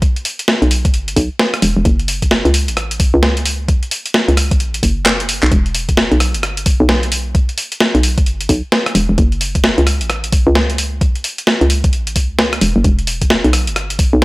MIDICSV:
0, 0, Header, 1, 3, 480
1, 0, Start_track
1, 0, Tempo, 458015
1, 22, Time_signature, 4, 2, 24, 8
1, 14929, End_track
2, 0, Start_track
2, 0, Title_t, "FM bass"
2, 0, Program_c, 0, 39
2, 0, Note_on_c, 0, 35, 103
2, 144, Note_off_c, 0, 35, 0
2, 650, Note_on_c, 0, 35, 90
2, 890, Note_on_c, 0, 31, 89
2, 906, Note_off_c, 0, 35, 0
2, 1206, Note_off_c, 0, 31, 0
2, 1221, Note_on_c, 0, 35, 106
2, 1354, Note_off_c, 0, 35, 0
2, 1702, Note_on_c, 0, 28, 93
2, 1834, Note_off_c, 0, 28, 0
2, 1850, Note_on_c, 0, 28, 84
2, 1932, Note_off_c, 0, 28, 0
2, 1941, Note_on_c, 0, 30, 101
2, 2544, Note_off_c, 0, 30, 0
2, 2569, Note_on_c, 0, 37, 91
2, 2810, Note_on_c, 0, 33, 88
2, 2826, Note_off_c, 0, 37, 0
2, 3264, Note_off_c, 0, 33, 0
2, 3290, Note_on_c, 0, 37, 103
2, 3984, Note_off_c, 0, 37, 0
2, 4490, Note_on_c, 0, 37, 89
2, 4730, Note_on_c, 0, 33, 91
2, 4745, Note_off_c, 0, 37, 0
2, 5045, Note_off_c, 0, 33, 0
2, 5061, Note_on_c, 0, 30, 81
2, 5664, Note_off_c, 0, 30, 0
2, 5690, Note_on_c, 0, 35, 80
2, 5772, Note_off_c, 0, 35, 0
2, 5780, Note_on_c, 0, 28, 101
2, 6384, Note_off_c, 0, 28, 0
2, 6409, Note_on_c, 0, 35, 90
2, 6649, Note_on_c, 0, 31, 90
2, 6664, Note_off_c, 0, 35, 0
2, 7104, Note_off_c, 0, 31, 0
2, 7129, Note_on_c, 0, 35, 104
2, 7824, Note_off_c, 0, 35, 0
2, 8329, Note_on_c, 0, 35, 90
2, 8569, Note_on_c, 0, 31, 91
2, 8585, Note_off_c, 0, 35, 0
2, 8885, Note_off_c, 0, 31, 0
2, 8900, Note_on_c, 0, 35, 105
2, 9033, Note_off_c, 0, 35, 0
2, 9379, Note_on_c, 0, 28, 94
2, 9513, Note_off_c, 0, 28, 0
2, 9529, Note_on_c, 0, 28, 83
2, 9611, Note_off_c, 0, 28, 0
2, 9620, Note_on_c, 0, 30, 101
2, 10224, Note_off_c, 0, 30, 0
2, 10250, Note_on_c, 0, 37, 91
2, 10489, Note_on_c, 0, 33, 91
2, 10505, Note_off_c, 0, 37, 0
2, 10944, Note_off_c, 0, 33, 0
2, 10970, Note_on_c, 0, 37, 105
2, 11664, Note_off_c, 0, 37, 0
2, 12171, Note_on_c, 0, 37, 90
2, 12409, Note_on_c, 0, 33, 90
2, 12425, Note_off_c, 0, 37, 0
2, 12741, Note_on_c, 0, 37, 84
2, 12756, Note_off_c, 0, 33, 0
2, 13205, Note_off_c, 0, 37, 0
2, 13221, Note_on_c, 0, 28, 85
2, 13354, Note_off_c, 0, 28, 0
2, 13370, Note_on_c, 0, 30, 91
2, 13452, Note_off_c, 0, 30, 0
2, 13460, Note_on_c, 0, 28, 99
2, 14064, Note_off_c, 0, 28, 0
2, 14090, Note_on_c, 0, 35, 92
2, 14331, Note_on_c, 0, 31, 89
2, 14347, Note_off_c, 0, 35, 0
2, 14785, Note_off_c, 0, 31, 0
2, 14811, Note_on_c, 0, 35, 103
2, 14929, Note_off_c, 0, 35, 0
2, 14929, End_track
3, 0, Start_track
3, 0, Title_t, "Drums"
3, 21, Note_on_c, 9, 36, 115
3, 22, Note_on_c, 9, 42, 70
3, 126, Note_off_c, 9, 36, 0
3, 127, Note_off_c, 9, 42, 0
3, 172, Note_on_c, 9, 42, 38
3, 263, Note_on_c, 9, 46, 104
3, 277, Note_off_c, 9, 42, 0
3, 368, Note_off_c, 9, 46, 0
3, 412, Note_on_c, 9, 42, 69
3, 502, Note_on_c, 9, 38, 118
3, 516, Note_off_c, 9, 42, 0
3, 607, Note_off_c, 9, 38, 0
3, 652, Note_on_c, 9, 42, 39
3, 743, Note_on_c, 9, 46, 107
3, 757, Note_off_c, 9, 42, 0
3, 848, Note_off_c, 9, 46, 0
3, 890, Note_on_c, 9, 36, 103
3, 891, Note_on_c, 9, 42, 69
3, 983, Note_off_c, 9, 42, 0
3, 983, Note_on_c, 9, 42, 71
3, 995, Note_off_c, 9, 36, 0
3, 1087, Note_off_c, 9, 42, 0
3, 1131, Note_on_c, 9, 42, 69
3, 1221, Note_on_c, 9, 36, 58
3, 1221, Note_on_c, 9, 46, 107
3, 1236, Note_off_c, 9, 42, 0
3, 1326, Note_off_c, 9, 36, 0
3, 1326, Note_off_c, 9, 46, 0
3, 1461, Note_on_c, 9, 38, 116
3, 1566, Note_off_c, 9, 38, 0
3, 1611, Note_on_c, 9, 37, 66
3, 1611, Note_on_c, 9, 42, 55
3, 1701, Note_on_c, 9, 46, 108
3, 1716, Note_off_c, 9, 37, 0
3, 1716, Note_off_c, 9, 42, 0
3, 1806, Note_off_c, 9, 46, 0
3, 1941, Note_on_c, 9, 36, 115
3, 1941, Note_on_c, 9, 42, 69
3, 2046, Note_off_c, 9, 36, 0
3, 2046, Note_off_c, 9, 42, 0
3, 2091, Note_on_c, 9, 42, 38
3, 2181, Note_on_c, 9, 46, 112
3, 2195, Note_off_c, 9, 42, 0
3, 2286, Note_off_c, 9, 46, 0
3, 2330, Note_on_c, 9, 36, 60
3, 2330, Note_on_c, 9, 42, 71
3, 2422, Note_on_c, 9, 38, 115
3, 2435, Note_off_c, 9, 36, 0
3, 2435, Note_off_c, 9, 42, 0
3, 2526, Note_off_c, 9, 38, 0
3, 2571, Note_on_c, 9, 42, 39
3, 2662, Note_on_c, 9, 46, 113
3, 2676, Note_off_c, 9, 42, 0
3, 2766, Note_off_c, 9, 46, 0
3, 2811, Note_on_c, 9, 42, 70
3, 2901, Note_off_c, 9, 42, 0
3, 2901, Note_on_c, 9, 37, 67
3, 2901, Note_on_c, 9, 42, 71
3, 3006, Note_off_c, 9, 37, 0
3, 3006, Note_off_c, 9, 42, 0
3, 3051, Note_on_c, 9, 42, 71
3, 3141, Note_on_c, 9, 36, 100
3, 3141, Note_on_c, 9, 46, 111
3, 3156, Note_off_c, 9, 42, 0
3, 3246, Note_off_c, 9, 36, 0
3, 3246, Note_off_c, 9, 46, 0
3, 3382, Note_on_c, 9, 38, 110
3, 3487, Note_off_c, 9, 38, 0
3, 3531, Note_on_c, 9, 42, 56
3, 3621, Note_on_c, 9, 46, 113
3, 3636, Note_off_c, 9, 42, 0
3, 3726, Note_off_c, 9, 46, 0
3, 3861, Note_on_c, 9, 36, 115
3, 3862, Note_on_c, 9, 42, 70
3, 3966, Note_off_c, 9, 36, 0
3, 3967, Note_off_c, 9, 42, 0
3, 4010, Note_on_c, 9, 42, 38
3, 4101, Note_on_c, 9, 46, 110
3, 4115, Note_off_c, 9, 42, 0
3, 4206, Note_off_c, 9, 46, 0
3, 4251, Note_on_c, 9, 42, 70
3, 4341, Note_on_c, 9, 38, 121
3, 4356, Note_off_c, 9, 42, 0
3, 4446, Note_off_c, 9, 38, 0
3, 4491, Note_on_c, 9, 42, 39
3, 4582, Note_on_c, 9, 37, 60
3, 4582, Note_on_c, 9, 46, 116
3, 4596, Note_off_c, 9, 42, 0
3, 4687, Note_off_c, 9, 37, 0
3, 4687, Note_off_c, 9, 46, 0
3, 4730, Note_on_c, 9, 36, 106
3, 4731, Note_on_c, 9, 42, 68
3, 4822, Note_off_c, 9, 42, 0
3, 4822, Note_on_c, 9, 42, 68
3, 4835, Note_off_c, 9, 36, 0
3, 4927, Note_off_c, 9, 42, 0
3, 4970, Note_on_c, 9, 42, 68
3, 5061, Note_on_c, 9, 36, 58
3, 5062, Note_on_c, 9, 46, 113
3, 5075, Note_off_c, 9, 42, 0
3, 5166, Note_off_c, 9, 36, 0
3, 5167, Note_off_c, 9, 46, 0
3, 5302, Note_on_c, 9, 38, 113
3, 5302, Note_on_c, 9, 39, 108
3, 5407, Note_off_c, 9, 38, 0
3, 5407, Note_off_c, 9, 39, 0
3, 5451, Note_on_c, 9, 42, 56
3, 5542, Note_on_c, 9, 46, 111
3, 5556, Note_off_c, 9, 42, 0
3, 5646, Note_off_c, 9, 46, 0
3, 5690, Note_on_c, 9, 39, 82
3, 5781, Note_on_c, 9, 36, 123
3, 5781, Note_on_c, 9, 42, 66
3, 5795, Note_off_c, 9, 39, 0
3, 5886, Note_off_c, 9, 36, 0
3, 5886, Note_off_c, 9, 42, 0
3, 5930, Note_on_c, 9, 42, 37
3, 6021, Note_on_c, 9, 46, 111
3, 6035, Note_off_c, 9, 42, 0
3, 6126, Note_off_c, 9, 46, 0
3, 6169, Note_on_c, 9, 36, 62
3, 6170, Note_on_c, 9, 42, 66
3, 6260, Note_on_c, 9, 38, 125
3, 6274, Note_off_c, 9, 36, 0
3, 6274, Note_off_c, 9, 42, 0
3, 6365, Note_off_c, 9, 38, 0
3, 6409, Note_on_c, 9, 42, 38
3, 6501, Note_on_c, 9, 37, 62
3, 6501, Note_on_c, 9, 46, 112
3, 6514, Note_off_c, 9, 42, 0
3, 6605, Note_off_c, 9, 37, 0
3, 6605, Note_off_c, 9, 46, 0
3, 6649, Note_on_c, 9, 42, 65
3, 6740, Note_off_c, 9, 42, 0
3, 6740, Note_on_c, 9, 37, 74
3, 6740, Note_on_c, 9, 42, 68
3, 6845, Note_off_c, 9, 37, 0
3, 6845, Note_off_c, 9, 42, 0
3, 6888, Note_on_c, 9, 42, 68
3, 6979, Note_on_c, 9, 46, 114
3, 6980, Note_on_c, 9, 36, 108
3, 6993, Note_off_c, 9, 42, 0
3, 7084, Note_off_c, 9, 46, 0
3, 7085, Note_off_c, 9, 36, 0
3, 7219, Note_on_c, 9, 38, 118
3, 7324, Note_off_c, 9, 38, 0
3, 7368, Note_on_c, 9, 42, 54
3, 7459, Note_on_c, 9, 46, 115
3, 7473, Note_off_c, 9, 42, 0
3, 7564, Note_off_c, 9, 46, 0
3, 7700, Note_on_c, 9, 36, 123
3, 7700, Note_on_c, 9, 42, 64
3, 7805, Note_off_c, 9, 36, 0
3, 7805, Note_off_c, 9, 42, 0
3, 7849, Note_on_c, 9, 42, 36
3, 7940, Note_on_c, 9, 46, 108
3, 7954, Note_off_c, 9, 42, 0
3, 8045, Note_off_c, 9, 46, 0
3, 8089, Note_on_c, 9, 42, 66
3, 8179, Note_on_c, 9, 38, 126
3, 8193, Note_off_c, 9, 42, 0
3, 8284, Note_off_c, 9, 38, 0
3, 8329, Note_on_c, 9, 42, 36
3, 8420, Note_on_c, 9, 46, 110
3, 8434, Note_off_c, 9, 42, 0
3, 8524, Note_off_c, 9, 46, 0
3, 8569, Note_on_c, 9, 36, 113
3, 8569, Note_on_c, 9, 42, 64
3, 8660, Note_off_c, 9, 42, 0
3, 8660, Note_on_c, 9, 42, 65
3, 8674, Note_off_c, 9, 36, 0
3, 8765, Note_off_c, 9, 42, 0
3, 8809, Note_on_c, 9, 42, 64
3, 8900, Note_on_c, 9, 36, 62
3, 8900, Note_on_c, 9, 46, 109
3, 8914, Note_off_c, 9, 42, 0
3, 9004, Note_off_c, 9, 46, 0
3, 9005, Note_off_c, 9, 36, 0
3, 9140, Note_on_c, 9, 38, 123
3, 9244, Note_off_c, 9, 38, 0
3, 9289, Note_on_c, 9, 37, 73
3, 9289, Note_on_c, 9, 42, 52
3, 9380, Note_on_c, 9, 46, 110
3, 9394, Note_off_c, 9, 37, 0
3, 9394, Note_off_c, 9, 42, 0
3, 9485, Note_off_c, 9, 46, 0
3, 9620, Note_on_c, 9, 42, 65
3, 9621, Note_on_c, 9, 36, 123
3, 9725, Note_off_c, 9, 36, 0
3, 9725, Note_off_c, 9, 42, 0
3, 9769, Note_on_c, 9, 42, 36
3, 9860, Note_on_c, 9, 46, 100
3, 9874, Note_off_c, 9, 42, 0
3, 9965, Note_off_c, 9, 46, 0
3, 10009, Note_on_c, 9, 42, 64
3, 10010, Note_on_c, 9, 36, 67
3, 10100, Note_on_c, 9, 38, 127
3, 10114, Note_off_c, 9, 36, 0
3, 10114, Note_off_c, 9, 42, 0
3, 10204, Note_off_c, 9, 38, 0
3, 10249, Note_on_c, 9, 42, 36
3, 10340, Note_on_c, 9, 37, 60
3, 10340, Note_on_c, 9, 46, 107
3, 10354, Note_off_c, 9, 42, 0
3, 10445, Note_off_c, 9, 37, 0
3, 10445, Note_off_c, 9, 46, 0
3, 10490, Note_on_c, 9, 42, 63
3, 10581, Note_off_c, 9, 42, 0
3, 10581, Note_on_c, 9, 37, 73
3, 10581, Note_on_c, 9, 42, 63
3, 10685, Note_off_c, 9, 37, 0
3, 10685, Note_off_c, 9, 42, 0
3, 10730, Note_on_c, 9, 42, 64
3, 10821, Note_on_c, 9, 36, 114
3, 10821, Note_on_c, 9, 46, 106
3, 10834, Note_off_c, 9, 42, 0
3, 10925, Note_off_c, 9, 46, 0
3, 10926, Note_off_c, 9, 36, 0
3, 11060, Note_on_c, 9, 38, 126
3, 11165, Note_off_c, 9, 38, 0
3, 11210, Note_on_c, 9, 42, 51
3, 11301, Note_on_c, 9, 46, 109
3, 11315, Note_off_c, 9, 42, 0
3, 11406, Note_off_c, 9, 46, 0
3, 11541, Note_on_c, 9, 36, 125
3, 11542, Note_on_c, 9, 42, 67
3, 11646, Note_off_c, 9, 36, 0
3, 11647, Note_off_c, 9, 42, 0
3, 11690, Note_on_c, 9, 42, 36
3, 11781, Note_on_c, 9, 46, 99
3, 11795, Note_off_c, 9, 42, 0
3, 11886, Note_off_c, 9, 46, 0
3, 11930, Note_on_c, 9, 42, 65
3, 12021, Note_on_c, 9, 38, 125
3, 12035, Note_off_c, 9, 42, 0
3, 12126, Note_off_c, 9, 38, 0
3, 12170, Note_on_c, 9, 42, 36
3, 12261, Note_on_c, 9, 46, 103
3, 12275, Note_off_c, 9, 42, 0
3, 12365, Note_off_c, 9, 46, 0
3, 12409, Note_on_c, 9, 42, 65
3, 12410, Note_on_c, 9, 36, 112
3, 12501, Note_off_c, 9, 42, 0
3, 12501, Note_on_c, 9, 42, 65
3, 12515, Note_off_c, 9, 36, 0
3, 12606, Note_off_c, 9, 42, 0
3, 12649, Note_on_c, 9, 42, 66
3, 12741, Note_on_c, 9, 36, 65
3, 12741, Note_on_c, 9, 46, 104
3, 12754, Note_off_c, 9, 42, 0
3, 12845, Note_off_c, 9, 46, 0
3, 12846, Note_off_c, 9, 36, 0
3, 12980, Note_on_c, 9, 38, 123
3, 13085, Note_off_c, 9, 38, 0
3, 13129, Note_on_c, 9, 37, 69
3, 13129, Note_on_c, 9, 42, 53
3, 13219, Note_on_c, 9, 46, 104
3, 13234, Note_off_c, 9, 37, 0
3, 13234, Note_off_c, 9, 42, 0
3, 13324, Note_off_c, 9, 46, 0
3, 13460, Note_on_c, 9, 42, 70
3, 13461, Note_on_c, 9, 36, 120
3, 13565, Note_off_c, 9, 42, 0
3, 13566, Note_off_c, 9, 36, 0
3, 13609, Note_on_c, 9, 42, 36
3, 13700, Note_on_c, 9, 46, 105
3, 13714, Note_off_c, 9, 42, 0
3, 13804, Note_off_c, 9, 46, 0
3, 13850, Note_on_c, 9, 36, 61
3, 13850, Note_on_c, 9, 42, 69
3, 13941, Note_on_c, 9, 38, 123
3, 13955, Note_off_c, 9, 36, 0
3, 13955, Note_off_c, 9, 42, 0
3, 14046, Note_off_c, 9, 38, 0
3, 14090, Note_on_c, 9, 42, 38
3, 14181, Note_on_c, 9, 37, 57
3, 14181, Note_on_c, 9, 46, 106
3, 14195, Note_off_c, 9, 42, 0
3, 14286, Note_off_c, 9, 37, 0
3, 14286, Note_off_c, 9, 46, 0
3, 14330, Note_on_c, 9, 42, 67
3, 14421, Note_off_c, 9, 42, 0
3, 14421, Note_on_c, 9, 37, 66
3, 14421, Note_on_c, 9, 42, 68
3, 14526, Note_off_c, 9, 37, 0
3, 14526, Note_off_c, 9, 42, 0
3, 14570, Note_on_c, 9, 42, 68
3, 14661, Note_on_c, 9, 36, 106
3, 14662, Note_on_c, 9, 46, 103
3, 14675, Note_off_c, 9, 42, 0
3, 14766, Note_off_c, 9, 36, 0
3, 14767, Note_off_c, 9, 46, 0
3, 14929, End_track
0, 0, End_of_file